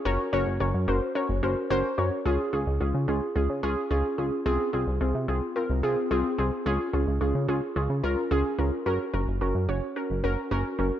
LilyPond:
<<
  \new Staff \with { instrumentName = "Synth pluck" } { \time 4/4 \key des \major \tempo 4 = 109 <des' ges' bes' des''>8 <des' ges' bes' des''>8 <des' ges' bes' des''>8 <des' ges' bes' c''>8 <des' ges' bes' des''>8 <des' ges' bes' c''>8 <des' ges' bes' c''>8 <des' ges' bes' des''>8 | <des' f' aes'>8 <des' f' aes'>8 <des' f' aes'>8 <des' f' aes'>8 <des' f' aes'>8 <des' f' aes'>8 <des' f' aes'>8 <des' f' aes'>8 | <c' f' aes'>8 <c' f' aes'>8 <c' f' aes'>8 <c' f' aes'>8 <c' f' bes'>8 <c' f' aes'>8 <c' f' aes'>8 <c' f' aes'>8 | <des' f' aes'>8 <des' f' aes'>8 <des' f' aes'>8 <des' f' aes'>8 <des' f' aes'>8 <des' f' bes'>8 <des' f' aes'>8 <des' f' bes'>8 |
<des' ges' bes'>8 <des' ges' bes'>8 <des' ges' bes'>8 <des' ges' des''>8 <des' ges' bes'>8 <des' ges' bes'>8 <des' ges' bes'>8 <des' ges' bes'>8 | }
  \new Staff \with { instrumentName = "Analog synth bass" } { \clef bass \time 4/4 \key des \major ges,,16 r16 ges,,16 ges,,16 ges,,16 ges,16 ges,,16 r8 ges,,16 ges,,16 r16 ges,,16 r16 ges,16 r16 | des,16 r16 des,16 des,16 des,16 des16 des,16 r16 des,16 des16 des,16 r16 des,16 r16 des,16 r16 | c,16 r16 c,16 c,16 c,16 c16 c,16 r8 c,16 c,16 r16 c,16 r16 c,16 r16 | des,16 r16 des,16 des,16 des,16 des16 des,16 r16 des,16 des16 des,16 r16 des,16 r16 des,16 r16 |
ges,,16 r16 ges,,16 ges,,16 ges,,16 ges,16 ges,,16 r8 ges,,16 ges,,16 r16 ges,,16 r16 ges,,16 r16 | }
>>